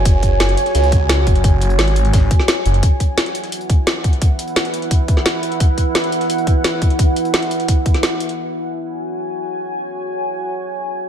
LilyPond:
<<
  \new Staff \with { instrumentName = "Ambient pad" } { \time 4/4 \key e \mixolydian \tempo 4 = 173 <fis' cis'' gis''>1~ | <fis' cis'' gis''>1 | <e' b' fis''>1~ | <e' b' fis''>1~ |
<e' b' fis''>1~ | <e' b' fis''>1 | <fis' cis'' gis''>1~ | <fis' cis'' gis''>1 | }
  \new Staff \with { instrumentName = "Detuned saw bass" } { \clef bass \time 4/4 \key e \mixolydian fis,,4. r8 cis,4. fis,,8~ | fis,,4 gis,,4. r4 fis,,8 | r1 | r1 |
r1 | r1 | r1 | r1 | }
  \new DrumStaff \with { instrumentName = "Drums" } \drummode { \time 4/4 <hh bd>8 <hh bd>8 <hh sn>16 hh16 hh16 <hh sn>16 hh16 hh16 <hh bd>8 <hh sn>8 <hh bd>16 hh16 | <hh bd>8 hh16 hh16 <hh sn>16 <hh sn>16 hh16 hh16 <hh bd sn>8 <hh bd>16 sn16 <hh sn>8 hh16 hh16 | <hh bd>8 <hh bd>8 <hh sn>16 hh16 hh16 <hh sn>16 hh16 hh16 <hh bd>8 <hh sn>8 <hh bd>16 hh16 | <hh bd>8 hh16 hh16 <hh sn>16 <hh sn>16 hh16 hh16 <hh bd>8 <hh bd>16 sn16 <hh sn>8 hh16 hh16 |
<hh bd>8 <hh bd>8 <hh sn>16 hh16 hh16 <hh sn>16 hh16 hh16 <hh bd>8 <hh sn>8 <hh bd>16 hh16 | <hh bd>8 hh16 hh16 <hh sn>16 <hh sn>16 hh16 hh16 <hh bd>8 <hh bd>16 <hh sn>16 <hh sn>8 hh16 hh16 | r4 r4 r4 r4 | r4 r4 r4 r4 | }
>>